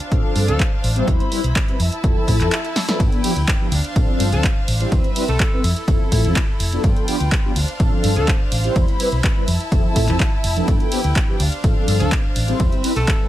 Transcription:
Already playing: D4 C5 F5
0.00 closed hi-hat
0.11 A1 F3 C4 D4 A4, kick, closed hi-hat
0.36 G2, open hi-hat
0.48 D2 F3 C4 D4 A4, closed hi-hat
0.60 kick, clap, closed hi-hat
0.84 A1, open hi-hat
0.96 G3 C4 E4 C5, closed hi-hat
1.08 E2 E4 B5, kick, closed hi-hat
1.20 closed hi-hat
1.31 G3 C4 E4 B4, open hi-hat
1.44 B1, closed hi-hat
1.56 kick, clap, closed hi-hat
1.67 G3 C4 E4 B4, closed hi-hat
1.79 F2 E4 E5 A5, open hi-hat
1.92 closed hi-hat
2.03 F1 F3 C4 E4 A4, kick, closed hi-hat
2.28 A2, kick, open hi-hat
2.40 F2 F3 C4 E4 A4, clap, closed hi-hat
2.52 clap, closed hi-hat
2.65 closed hi-hat
2.76 snare, open hi-hat
2.88 F3 B3 D4 A4, snare, closed hi-hat
3.00 G2 B4 G5, kick, closed hi-hat, ride
3.12 closed hi-hat
3.23 F3 B3 D4 G4, open hi-hat, ride
3.36 D2, closed hi-hat
3.48 kick, clap, closed hi-hat, ride
3.60 F3 B3 D4 G4
3.72 D2 D4 C5 F5, open hi-hat, ride
3.85 closed hi-hat
3.96 A1 F3 C4 D4 A4, kick, closed hi-hat, ride
4.20 G2, open hi-hat, ride
4.32 D2 F3 C4 D4 A4, closed hi-hat
4.44 kick, clap, closed hi-hat, ride
4.68 A1, open hi-hat, ride
4.80 G3 C4 E4 C5, closed hi-hat
4.92 E2 C4 B4 E5, kick, closed hi-hat, ride
5.04 closed hi-hat
5.16 G3 C4 E4 B4, open hi-hat, ride
5.28 B1 A4, closed hi-hat
5.40 kick, clap, closed hi-hat, ride
5.52 G3 C4 E4 B4
5.64 F2 E4 A4, open hi-hat, ride
5.76 closed hi-hat
5.88 F1 F3 C4 E4 A4, kick, closed hi-hat, ride
6.12 A2, kick, open hi-hat, ride
6.24 F2 F3 C4 E4 A4, closed hi-hat
6.36 kick, clap, closed hi-hat, ride
6.60 F1, open hi-hat, ride
6.72 F3 B3 D4 A4, closed hi-hat
6.84 G2 F4 B4 G5, kick, closed hi-hat, ride
6.96 closed hi-hat
7.07 F3 B3 D4 G4, open hi-hat, ride
7.20 D2, closed hi-hat
7.32 kick, clap, closed hi-hat, ride
7.44 F3 B3 D4 G4
7.55 D2 D4 C5 F5, open hi-hat, ride
7.68 closed hi-hat
7.80 A1 F3 C4 D4 A4, kick, closed hi-hat, ride
8.04 G2, open hi-hat, ride
8.16 D2 F3 C4 D4 A4, closed hi-hat
8.28 kick, clap, closed hi-hat, ride
8.52 A1, open hi-hat, ride
8.64 G3 C4 E4 C5, closed hi-hat
8.76 E2 E4 B5, kick, closed hi-hat, ride
8.88 closed hi-hat
8.99 G3 C4 E4 B4, open hi-hat, ride
9.12 B1, closed hi-hat
9.24 kick, clap, closed hi-hat, ride
9.36 G3 C4 E4 B4
9.48 F2 E4 E5 A5, open hi-hat, ride
9.60 closed hi-hat
9.71 F1 F3 C4 E4 A4, kick, closed hi-hat, ride
9.96 A2, kick, open hi-hat, ride
10.08 F2 F3 C4 E4 A4, clap, closed hi-hat
10.20 kick, clap, closed hi-hat, ride
10.44 F1, open hi-hat, ride
10.56 F3 B3 D4 A4, closed hi-hat
10.68 G2 B4 G5, kick, closed hi-hat, ride
10.80 closed hi-hat
10.91 F3 B3 D4 G4, open hi-hat, ride
11.04 D2, closed hi-hat
11.16 kick, clap, closed hi-hat, ride
11.28 F3 B3 D4 G4
11.40 D2 D4 C5 F5, open hi-hat, ride
11.52 closed hi-hat
11.63 A1 F3 C4 D4 A4, kick, closed hi-hat, ride
11.88 G2, open hi-hat, ride
12.00 D2 F3 C4 D4 A4, closed hi-hat
12.12 kick, clap, closed hi-hat, ride
12.36 A1, open hi-hat, ride
12.48 G3 C4 E4 C5, closed hi-hat
12.60 E2 C4 B4 E5, kick, closed hi-hat, ride
12.72 closed hi-hat
12.83 G3 C4 E4 B4, open hi-hat, ride
12.96 B1 A4, closed hi-hat
13.08 kick, clap, closed hi-hat, ride
13.20 G3 C4 E4 B4

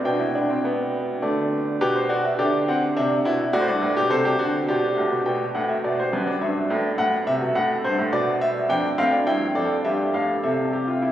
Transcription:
0.05 B2 D4 G5
0.19 E4
0.35 D4
0.50 C4
0.65 B3
1.22 D3 A3 D5
1.81 B2 G4 B4
1.96 C5
2.09 F#4 D5
2.25 E5
2.39 D3 G4 D5
2.68 C4 F#5
2.97 C3 D4 E5
3.25 B2 E4
3.53 A2 F#4 D5
3.61 C5
3.67 G2 D5
3.82 A2
3.96 B2 G4
4.10 C3 A4 C5
4.25 G4
4.39 D3 F#4
4.68 B2 G4 D5
4.96 A2
5.11 B2
5.26 B2 G5
5.55 A2 F#5
5.69 E5
5.84 B2 D5
6.00 C5
6.13 F#2 B4
6.27 D5
6.41 G2 E5
6.70 A2
6.98 A2 F#5
7.27 C3 E5
7.41 B2
7.55 A2 F#5
7.84 G2 C5
7.99 A2
8.12 B2 D5
8.41 E5
8.69 F2 D4 G5
8.98 A2 C4 F5
9.13 D4
9.27 G2 E4 G5
9.55 F2 A4 D5
9.85 G2 G4 E5
10.14 A2 F5
10.44 C3 A4 E5
10.73 G4
10.88 F4
11.02 E4

